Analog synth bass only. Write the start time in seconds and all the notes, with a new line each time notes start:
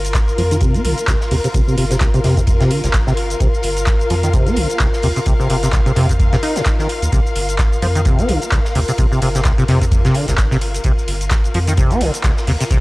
Already playing: G1
0.38 F2
0.85 C2
1.31 D#2
1.54 C2
1.78 G1
2.24 F2
2.84 G1
3.40 C2
3.64 G1
4.10 F2
4.57 C2
5.03 D#2
5.26 C2
5.50 G1
5.96 F2
7.02 D#2
7.12 C2
7.36 G1
7.82 F2
8.29 C2
8.75 D#2
8.99 C2
9.22 G1
9.68 F2
10.28 G1
10.85 C2
11.08 G1
11.54 F2
12.01 C2
12.47 D#2
12.71 C2